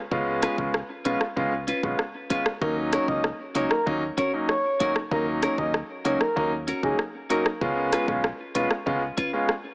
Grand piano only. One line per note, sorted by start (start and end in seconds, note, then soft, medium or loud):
0.11 0.54 G#3 medium
0.11 0.55 B3 medium
0.11 0.55 C#4 medium
0.11 0.55 F4 loud
0.58 0.73 G#3 medium
0.58 0.73 B3 medium
0.58 0.73 C#4 medium
0.58 0.73 F4 medium
1.05 1.20 G#3 medium
1.05 1.20 B3 medium
1.05 1.20 C#4 medium
1.05 1.20 F4 medium
1.36 1.51 G#3 medium
1.36 1.51 B3 medium
1.36 1.51 C#4 medium
1.36 1.51 F4 loud
1.83 1.98 G#3 medium
1.83 1.98 B3 medium
1.83 1.98 C#4 medium
1.83 1.98 F4 medium
2.30 2.45 G#3 medium
2.30 2.45 B3 medium
2.30 2.45 C#4 medium
2.30 2.45 F4 medium
2.61 3.05 F#3 medium
2.61 3.05 A#3 medium
2.61 3.05 C#4 medium
2.61 3.05 D#4 loud
3.08 3.23 F#3 medium
3.08 3.23 A#3 medium
3.08 3.23 C#4 medium
3.08 3.23 D#4 medium
3.55 3.70 F#3 medium
3.55 3.70 A#3 medium
3.55 3.70 C#4 medium
3.55 3.70 D#4 medium
3.86 4.01 F#3 medium
3.86 4.01 A#3 medium
3.86 4.01 C#4 medium
3.86 4.01 D#4 loud
4.33 4.48 F#3 medium
4.33 4.48 A#3 medium
4.33 4.48 C#4 medium
4.33 4.48 D#4 medium
4.80 4.95 F#3 medium
4.80 4.95 A#3 medium
4.80 4.95 C#4 medium
4.80 4.95 D#4 medium
5.11 5.54 F#3 medium
5.11 5.55 A#3 medium
5.11 5.55 C#4 medium
5.11 5.55 D#4 loud
5.58 5.73 F#3 medium
5.58 5.73 A#3 medium
5.58 5.73 C#4 medium
5.58 5.73 D#4 medium
6.05 6.20 F#3 medium
6.05 6.20 A#3 medium
6.05 6.20 C#4 medium
6.05 6.20 D#4 medium
6.36 6.51 F#3 medium
6.36 6.51 A#3 medium
6.36 6.51 C#4 medium
6.36 6.51 D#4 loud
6.83 6.98 F#3 medium
6.83 6.98 A#3 medium
6.83 6.98 C#4 medium
6.83 6.98 D#4 medium
7.30 7.45 F#3 medium
7.30 7.45 A#3 medium
7.30 7.45 C#4 medium
7.30 7.45 D#4 medium
7.61 8.04 G#3 medium
7.61 8.04 B3 medium
7.61 8.05 C#4 medium
7.61 8.05 F4 loud
8.08 8.23 G#3 medium
8.08 8.23 B3 medium
8.08 8.23 C#4 medium
8.08 8.23 F4 medium
8.55 8.70 G#3 medium
8.55 8.70 B3 medium
8.55 8.70 C#4 medium
8.55 8.70 F4 medium
8.86 9.01 G#3 medium
8.86 9.01 B3 medium
8.86 9.01 C#4 medium
8.86 9.01 F4 loud
9.33 9.48 G#3 medium
9.33 9.48 B3 medium
9.33 9.48 C#4 medium
9.33 9.48 F4 medium